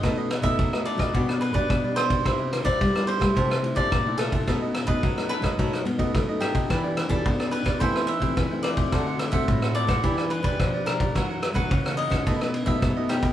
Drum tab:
RD |x-xxx-xxx-xxx-xx|x-xxx-xxx-xxx-xx|x-xxx-xxx-xxx-xx|x-xxx-xxx-xxx-xx|
SD |r-r--r-r-r--r-r-|r-r--r-r-r--r-r-|r-r--r-r-r--r-r-|r-r--r-r-r--r-r-|
BD |o--oo--oo--oo--o|o--oo--oo--oo--o|o--oo--oo--oo--o|o--oo--oo--oo--o|

RD |x-xxx-xxx-xxx-xx|x-xxx-xxx-xxx-xx|
SD |r-r--r-r-r--r-r-|r-r--r-r-r--r-r-|
BD |o--oo--oo--oo--o|o--oo--oo--oo--o|